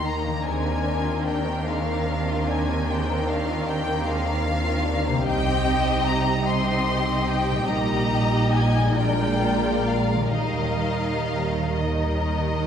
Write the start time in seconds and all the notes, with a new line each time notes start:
Already playing: D#2 D#3 A#3 D#4 A#4
0.06 D#4 A#5
0.23 D#3 A#3
0.32 A#3
0.36 D4
0.41 A#4 C5 G#5
0.45 D#2 D#3 G#3 C4 D4
0.64 A#3
0.84 D4
1.04 F4
1.24 D4 G5
1.45 A#3
1.65 G#3 F5
1.85 A#3
2.06 D4
2.28 F4
2.48 D4 G#5
2.69 A#3
2.89 G#3 G5
3.08 A#3
3.27 D4 F5
3.47 F4
3.66 D4 G5
3.85 A#3
4.05 G#3 F5
4.25 A#3
4.45 D4
4.64 F4
4.85 D4
5.05 C3 A#3
5.12 C4
5.16 D#4
5.21 C2 C3 C4 D#4 G4 D#5
5.27 G5
6.06 A#5
6.43 C4 D#4 G4 D#5 C6
7.28 G5
7.51 A#2
7.56 G3
7.60 D#4
7.64 A#1 A#2 G3 D#4 G4 D#5
7.68 G4 A#5
8.53 G#5
8.78 A#2
8.83 G#3
8.87 D4
8.92 A#2 G#3 F4 A#4 D5
8.96 A#1 G5
9.87 F5
10.16 D#3
10.21 G3 D#4
10.30 G3 A#4 D#5
10.34 D#2 D#3 D#4 F5
11.74 G3 D#4 A#4 D#5